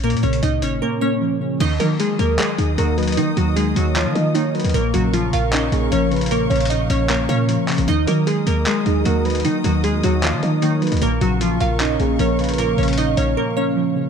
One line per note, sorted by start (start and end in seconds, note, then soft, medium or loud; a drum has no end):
0.00 0.15 A#1 loud
0.00 1.02 A#2 loud
0.00 0.20 A#4 medium
0.00 closed hi-hat medium
0.04 0.21 A#3 medium
0.10 0.23 A#2 loud
0.10 closed hi-hat medium
0.17 closed hi-hat medium
0.23 0.42 A#1 loud
0.23 1.21 C#3 medium
0.23 0.40 C#4 medium
0.23 0.40 C#5 medium
0.23 closed hi-hat medium
0.33 closed hi-hat medium
0.43 0.64 C#2 loud
0.43 0.60 D#4 medium
0.43 0.59 D#5 medium
0.43 closed hi-hat medium
0.62 0.81 G#1 loud
0.62 0.80 C#4 medium
0.62 0.79 C#5 medium
0.62 closed hi-hat medium
0.82 0.99 A#3 medium
0.82 1.60 C#4 loud
0.82 0.99 A#4 medium
1.01 1.60 A#3 medium
1.01 1.57 C#4 medium
1.01 1.57 C#5 medium
1.21 1.61 F3 medium
1.41 1.60 C#3 medium
1.60 1.79 D#2 loud
1.60 2.58 D#3 loud
1.60 1.78 D#4 medium
1.60 10.98 A#4 medium
1.60 4.71 D#5 medium
1.60 1.77 D#5 loud
1.60 4.71 D#6 medium
1.60 closed hi-hat medium
1.60 crash loud
1.80 2.18 D#3 loud
1.80 2.78 F#3 medium
1.80 1.97 A#3 medium
1.80 1.97 A#4 medium
1.80 closed hi-hat medium
2.00 2.17 G#3 medium
2.00 2.16 G#4 medium
2.00 closed hi-hat medium
2.19 2.38 D#2 loud
2.19 2.37 A#3 medium
2.19 2.56 A#4 medium
2.19 2.36 A#4 medium
2.19 closed hi-hat medium
2.39 2.76 G#3 medium
2.39 2.76 G#4 medium
2.39 3.37 D#5 loud
2.39 clap loud
2.39 closed hi-hat medium
2.58 2.77 D#2 loud
2.58 3.56 D#4 medium
2.58 2.77 G#4 medium
2.58 closed hi-hat medium
2.78 3.19 D#2 loud
2.78 3.15 F#3 medium
2.78 3.76 A#3 medium
2.78 3.15 F#4 medium
2.78 2.97 A#4 medium
2.78 closed hi-hat medium
2.98 3.96 F#3 medium
2.98 3.16 B4 medium
2.98 closed hi-hat soft
3.03 closed hi-hat medium
3.08 closed hi-hat medium
3.12 closed hi-hat medium
3.17 4.15 D#3 loud
3.17 3.36 D#3 loud
3.17 3.35 D#3 medium
3.17 3.34 D#4 medium
3.17 closed hi-hat medium
3.37 3.75 D#2 loud
3.37 3.54 F#3 medium
3.37 3.54 F#4 medium
3.37 closed hi-hat medium
3.56 3.74 G#3 medium
3.56 3.73 G#4 medium
3.56 closed hi-hat medium
3.76 4.07 D#2 loud
3.76 3.94 F#3 medium
3.76 3.93 F#4 medium
3.76 4.13 C#5 medium
3.76 closed hi-hat medium
3.96 4.33 F3 medium
3.96 4.33 F4 medium
3.96 4.74 D#5 loud
3.96 clap loud
3.96 closed hi-hat medium
4.06 4.15 D#3 loud
4.15 4.62 D#3 loud
4.15 4.74 D#4 medium
4.15 4.34 D#5 medium
4.15 closed hi-hat medium
4.35 4.72 D#3 medium
4.35 4.74 A#3 medium
4.35 4.72 D#4 medium
4.35 4.54 C#5 medium
4.35 closed hi-hat medium
4.55 4.74 F#3 medium
4.55 4.73 B4 medium
4.55 closed hi-hat soft
4.60 closed hi-hat medium
4.64 4.74 D#2 loud
4.64 closed hi-hat medium
4.69 closed hi-hat medium
4.74 4.93 A#1 loud
4.74 5.72 A#2 loud
4.74 4.91 A#3 medium
4.74 4.91 A#4 loud
4.74 7.85 F5 medium
4.74 7.85 C#6 loud
4.74 closed hi-hat medium
4.94 5.31 A#1 loud
4.94 5.92 C#3 medium
4.94 5.11 F#3 medium
4.94 5.11 F#4 medium
4.94 closed hi-hat medium
5.13 5.31 F3 medium
5.13 5.30 F4 medium
5.13 closed hi-hat medium
5.33 5.71 A#1 loud
5.33 5.50 F4 medium
5.33 5.70 A#4 medium
5.33 5.50 F5 medium
5.33 closed hi-hat medium
5.53 6.51 C#4 loud
5.53 5.90 D#4 medium
5.53 5.89 D#5 medium
5.53 clap loud
5.53 closed hi-hat medium
5.72 5.91 A#1 loud
5.72 6.71 A#3 medium
5.72 5.91 G#4 medium
5.72 closed hi-hat medium
5.92 6.48 A#1 loud
5.92 6.90 F3 medium
5.92 6.29 C#4 medium
5.92 6.11 A#4 medium
5.92 6.29 C#5 medium
5.92 closed hi-hat medium
6.11 6.50 C#3 medium
6.11 6.30 B4 loud
6.11 closed hi-hat soft
6.16 closed hi-hat medium
6.21 closed hi-hat medium
6.26 closed hi-hat medium
6.31 7.29 A#2 loud
6.31 6.48 A#3 medium
6.31 6.48 A#4 medium
6.31 closed hi-hat medium
6.50 6.88 A#1 loud
6.50 7.49 C#3 medium
6.50 6.68 C#4 medium
6.50 6.67 C#5 medium
6.50 closed hi-hat medium
6.56 closed hi-hat medium
6.60 closed hi-hat medium
6.65 closed hi-hat medium
6.70 6.87 D#4 medium
6.70 6.87 D#5 medium
6.70 closed hi-hat medium
6.90 7.28 A#1 loud
6.90 7.07 C#4 medium
6.90 7.27 C#5 loud
6.90 7.07 C#5 medium
6.90 closed hi-hat medium
7.09 7.27 A#3 medium
7.09 7.88 C#4 loud
7.09 7.26 A#4 medium
7.09 clap loud
7.09 closed hi-hat medium
7.29 7.57 A#2 loud
7.29 7.88 A#3 medium
7.29 7.85 C#4 medium
7.29 7.84 C#5 medium
7.29 7.48 F5 medium
7.29 closed hi-hat medium
7.49 7.88 F3 medium
7.49 closed hi-hat medium
7.68 7.88 C#3 medium
7.68 clap medium
7.68 closed hi-hat soft
7.68 open hi-hat medium
7.78 7.87 A#1 loud
7.78 closed hi-hat medium
7.88 8.07 D#2 loud
7.88 8.86 D#3 loud
7.88 8.05 D#4 medium
7.88 10.98 D#5 medium
7.88 8.05 D#5 loud
7.88 10.98 D#6 loud
7.88 closed hi-hat medium
8.07 8.45 D#3 loud
8.07 9.06 F#3 medium
8.07 8.25 A#3 medium
8.07 8.24 A#4 medium
8.07 closed hi-hat medium
8.27 8.44 G#3 medium
8.27 8.44 G#4 medium
8.27 closed hi-hat medium
8.47 8.66 D#2 loud
8.47 8.64 A#3 medium
8.47 8.84 A#4 medium
8.47 8.64 A#4 medium
8.47 closed hi-hat medium
8.66 9.04 G#3 medium
8.66 9.03 G#4 medium
8.66 9.64 D#5 loud
8.66 clap loud
8.66 closed hi-hat medium
8.86 9.05 D#2 loud
8.86 9.84 D#4 medium
8.86 9.05 G#4 medium
8.86 closed hi-hat medium
9.05 9.46 D#2 loud
9.05 9.43 F#3 medium
9.05 10.04 A#3 medium
9.05 9.42 F#4 medium
9.05 9.24 A#4 medium
9.05 closed hi-hat medium
9.25 10.23 F#3 medium
9.25 9.44 B4 medium
9.25 closed hi-hat soft
9.30 closed hi-hat medium
9.35 closed hi-hat medium
9.40 closed hi-hat medium
9.45 10.43 D#3 medium
9.45 9.63 D#3 loud
9.45 9.62 D#3 medium
9.45 9.62 D#4 medium
9.45 closed hi-hat medium
9.64 10.02 D#2 loud
9.64 9.82 F#3 medium
9.64 9.81 F#4 medium
9.64 closed hi-hat medium
9.84 10.01 G#3 medium
9.84 10.01 G#4 medium
9.84 closed hi-hat medium
10.03 10.35 D#2 loud
10.03 10.21 F#3 medium
10.03 10.21 F#4 medium
10.03 10.40 C#5 medium
10.03 closed hi-hat medium
10.23 10.61 F3 medium
10.23 10.60 F4 medium
10.23 11.02 D#5 loud
10.23 clap loud
10.23 closed hi-hat medium
10.33 10.42 D#3 loud
10.43 10.90 D#3 loud
10.43 11.02 D#4 medium
10.43 10.61 D#5 medium
10.43 closed hi-hat medium
10.62 11.00 D#3 medium
10.62 11.02 A#3 medium
10.62 10.99 D#4 medium
10.62 10.81 C#5 medium
10.62 closed hi-hat medium
10.82 11.02 F#3 medium
10.82 11.01 B4 medium
10.82 closed hi-hat soft
10.87 closed hi-hat medium
10.92 11.01 D#2 loud
10.92 closed hi-hat medium
10.97 closed hi-hat medium
11.02 11.21 A#1 loud
11.02 12.00 A#2 loud
11.02 11.19 A#3 medium
11.02 14.10 A#4 medium
11.02 11.19 A#4 medium
11.02 14.10 F5 medium
11.02 14.10 C#6 loud
11.02 closed hi-hat medium
11.21 11.59 A#1 loud
11.21 12.19 C#3 medium
11.21 11.39 F#3 medium
11.21 11.38 F#4 medium
11.21 closed hi-hat medium
11.41 11.58 F3 medium
11.41 11.58 F4 medium
11.41 closed hi-hat medium
11.60 11.98 A#1 loud
11.60 11.78 F4 medium
11.60 11.97 A#4 medium
11.60 11.77 F5 medium
11.60 closed hi-hat medium
11.80 12.78 C#4 loud
11.80 12.17 D#4 medium
11.80 12.17 D#5 medium
11.80 clap loud
11.80 closed hi-hat medium
12.00 12.18 A#1 loud
12.00 12.98 A#3 medium
12.00 12.18 G#4 medium
12.00 closed hi-hat medium
12.19 12.76 A#1 loud
12.19 13.17 F3 medium
12.19 12.57 C#4 medium
12.19 12.38 A#4 medium
12.19 12.56 C#5 medium
12.19 closed hi-hat medium
12.39 12.77 C#3 medium
12.39 12.58 B4 loud
12.39 closed hi-hat soft
12.44 closed hi-hat medium
12.49 closed hi-hat medium
12.54 closed hi-hat medium
12.58 13.57 A#2 loud
12.58 12.76 A#3 medium
12.58 12.75 A#4 loud
12.58 closed hi-hat medium
12.78 13.16 A#1 loud
12.78 13.76 C#3 medium
12.78 12.95 C#4 medium
12.78 12.95 C#5 medium
12.78 closed hi-hat medium
12.83 closed hi-hat medium
12.88 closed hi-hat medium
12.93 closed hi-hat medium
12.98 13.15 D#4 medium
12.98 13.15 D#5 medium
12.98 closed hi-hat medium
13.17 13.36 A#1 loud
13.17 13.35 C#4 medium
13.17 13.34 C#5 medium
13.17 13.54 C#5 medium
13.17 closed hi-hat medium
13.37 13.54 A#3 medium
13.37 14.10 C#4 loud
13.37 13.54 A#4 medium
13.56 14.10 A#3 medium
13.56 14.10 C#4 medium
13.56 14.10 C#5 medium
13.56 13.75 F5 medium
13.76 14.10 F3 medium
13.96 14.10 C#3 medium